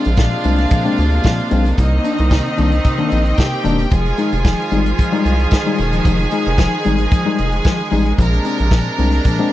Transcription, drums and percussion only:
0.05 closed hi-hat medium
0.05 tambourine soft
0.17 kick loud
0.17 snare loud
0.17 tambourine medium
0.44 closed hi-hat medium
0.44 tambourine medium
0.58 snare soft
0.58 closed hi-hat medium
0.71 kick loud
0.71 closed hi-hat medium
0.71 tambourine medium
0.85 closed hi-hat soft
0.98 closed hi-hat medium
0.98 tambourine medium
1.12 closed hi-hat soft
1.24 kick loud
1.24 snare loud
1.24 tambourine medium
1.39 closed hi-hat soft
1.51 closed hi-hat medium
1.51 tambourine soft
1.65 closed hi-hat medium
1.65 tambourine soft
1.78 kick loud
1.78 closed hi-hat medium
1.78 tambourine medium
2.04 closed hi-hat medium
2.04 tambourine medium
2.18 closed hi-hat soft
2.18 tambourine soft
2.31 kick loud
2.31 snare loud
2.31 tambourine medium
2.46 closed hi-hat soft
2.58 closed hi-hat soft
2.58 tambourine medium
2.72 closed hi-hat medium
2.84 kick loud
2.84 closed hi-hat medium
2.84 tambourine medium
3.12 closed hi-hat medium
3.12 tambourine soft
3.25 closed hi-hat medium
3.25 tambourine soft
3.38 kick loud
3.38 snare loud
3.38 tambourine loud
3.53 closed hi-hat soft
3.65 closed hi-hat medium
3.65 tambourine medium
3.79 closed hi-hat medium
3.79 tambourine soft
3.91 kick loud
3.91 closed hi-hat medium
3.91 tambourine medium
4.06 tambourine soft
4.17 closed hi-hat medium
4.17 tambourine medium
4.32 closed hi-hat soft
4.32 tambourine soft
4.45 kick loud
4.45 snare loud
4.45 tambourine loud
4.60 closed hi-hat soft
4.71 closed hi-hat medium
4.71 tambourine medium
4.86 closed hi-hat medium
4.98 kick loud
4.98 closed hi-hat medium
4.98 tambourine medium
5.13 closed hi-hat soft
5.25 closed hi-hat medium
5.25 tambourine soft
5.39 closed hi-hat soft
5.51 kick loud
5.51 snare loud
5.51 tambourine loud
5.66 closed hi-hat soft
5.78 closed hi-hat medium
5.78 tambourine medium
5.92 closed hi-hat medium
5.92 tambourine soft
6.05 kick loud
6.05 closed hi-hat medium
6.05 tambourine medium
6.19 closed hi-hat soft
6.19 tambourine soft
6.31 closed hi-hat medium
6.31 tambourine medium
6.45 closed hi-hat soft
6.45 tambourine soft
6.58 kick loud
6.58 snare loud
6.58 tambourine loud
6.84 closed hi-hat medium
6.84 tambourine medium
6.98 closed hi-hat medium
7.11 kick loud
7.11 closed hi-hat medium
7.11 tambourine medium
7.38 closed hi-hat medium
7.38 tambourine medium
7.52 closed hi-hat medium
7.65 kick loud
7.65 snare loud
7.65 tambourine loud
7.79 closed hi-hat soft
7.91 open hi-hat medium
7.91 tambourine soft
8.06 closed hi-hat medium
8.18 kick loud
8.18 closed hi-hat medium
8.18 tambourine medium
8.33 closed hi-hat soft
8.33 tambourine soft
8.45 closed hi-hat medium
8.45 tambourine medium
8.58 closed hi-hat medium
8.71 kick loud
8.71 snare loud
8.71 tambourine medium
8.98 closed hi-hat medium
8.98 tambourine medium
9.12 snare soft
9.12 closed hi-hat medium
9.24 kick loud
9.24 closed hi-hat medium
9.24 tambourine medium
9.39 closed hi-hat soft

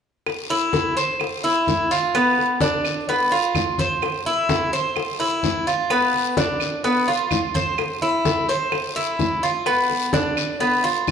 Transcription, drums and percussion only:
0.26 high bongo medium
0.26 high conga soft
0.26 long guiro medium
0.26 claves medium
0.50 high bongo soft
0.50 high conga soft
0.73 high bongo medium
0.73 high conga medium
0.73 short guiro medium
0.97 high bongo soft
0.97 high conga soft
0.97 short guiro medium
1.20 high bongo medium
1.20 high conga soft
1.20 long guiro medium
1.20 claves medium
1.44 high bongo soft
1.44 high conga soft
1.67 high bongo soft
1.67 low bongo medium
1.67 high conga medium
1.67 short guiro medium
1.91 high conga soft
1.91 short guiro medium
2.14 high bongo medium
2.14 high conga soft
2.14 long guiro medium
2.14 claves medium
2.38 high bongo soft
2.38 high conga soft
2.61 high bongo soft
2.61 high conga medium
2.61 short guiro medium
2.85 high bongo soft
2.85 high conga soft
2.85 short guiro medium
2.85 claves medium
3.08 high bongo medium
3.08 high conga soft
3.08 long guiro medium
3.32 high bongo soft
3.32 high conga soft
3.55 high bongo soft
3.55 low bongo medium
3.55 high conga medium
3.55 short guiro medium
3.55 claves medium
3.78 high conga medium
3.78 short guiro medium
4.02 high bongo medium
4.02 high conga soft
4.02 long guiro medium
4.02 claves medium
4.26 high bongo soft
4.26 high conga soft
4.49 high bongo medium
4.49 high conga medium
4.49 short guiro medium
4.73 high bongo soft
4.73 high conga soft
4.73 short guiro medium
4.96 high bongo medium
4.96 high conga soft
4.96 long guiro medium
4.96 claves medium
5.20 high bongo soft
5.20 high conga soft
5.43 high bongo soft
5.43 low bongo medium
5.43 high conga medium
5.43 short guiro medium
5.67 high conga soft
5.67 short guiro medium
5.90 high bongo medium
5.90 high conga soft
5.90 long guiro medium
5.90 claves medium
6.13 high bongo soft
6.13 high conga soft
6.37 high bongo medium
6.37 high conga medium
6.37 short guiro medium
6.60 high bongo soft
6.60 high conga soft
6.60 short guiro medium
6.60 claves medium
6.84 high bongo medium
6.84 high conga soft
6.84 long guiro medium
7.07 high bongo soft
7.07 high conga soft
7.31 high bongo soft
7.31 low bongo medium
7.31 high conga medium
7.31 short guiro medium
7.31 claves medium
7.54 high conga medium
7.54 short guiro medium
7.78 high bongo medium
7.78 high conga soft
7.78 long guiro medium
7.78 claves medium
8.01 high bongo soft
8.01 high conga soft
8.25 high bongo medium
8.25 high conga medium
8.25 short guiro medium
8.49 high bongo soft
8.49 high conga soft
8.49 short guiro medium
8.72 high bongo medium
8.72 high conga soft
8.72 long guiro medium
8.72 claves medium
8.96 high bongo soft
8.96 high conga soft
9.19 high bongo soft
9.19 low bongo medium
9.19 high conga medium
9.19 short guiro medium
9.43 high conga soft
9.43 short guiro medium
9.66 high bongo medium
9.66 high conga soft
9.66 long guiro medium
9.66 claves medium
9.90 high bongo soft
9.90 high conga soft
10.13 high bongo medium
10.13 high conga medium
10.13 short guiro medium
10.37 high bongo soft
10.37 high conga soft
10.37 short guiro medium
10.37 claves medium
10.61 high bongo medium
10.61 high conga soft
10.61 long guiro medium
10.84 high bongo soft
10.84 high conga soft
11.07 high bongo soft
11.07 low bongo medium
11.07 high conga medium
11.07 short guiro medium

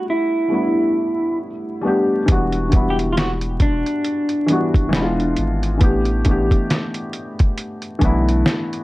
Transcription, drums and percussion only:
2.28 kick loud
2.28 closed hi-hat medium
2.52 closed hi-hat soft
2.72 kick loud
2.72 closed hi-hat medium
2.99 closed hi-hat soft
3.17 snare medium
3.17 closed hi-hat medium
3.41 closed hi-hat soft
3.60 kick medium
3.60 closed hi-hat medium
3.86 closed hi-hat soft
4.05 closed hi-hat medium
4.29 closed hi-hat soft
4.48 closed hi-hat medium
4.74 kick medium
4.74 closed hi-hat soft
4.93 snare loud
4.93 closed hi-hat medium
5.20 closed hi-hat soft
5.36 closed hi-hat medium
5.63 closed hi-hat soft
5.81 kick loud
5.81 closed hi-hat medium
6.05 closed hi-hat soft
6.25 kick medium
6.25 closed hi-hat medium
6.51 kick medium
6.51 closed hi-hat soft
6.70 snare loud
6.70 closed hi-hat medium
6.94 closed hi-hat soft
7.13 closed hi-hat medium
7.39 kick medium
7.39 closed hi-hat soft
7.58 closed hi-hat medium
7.82 closed hi-hat soft
8.01 kick medium
8.01 closed hi-hat medium
8.29 closed hi-hat soft
8.46 snare loud
8.46 closed hi-hat medium
8.73 closed hi-hat soft

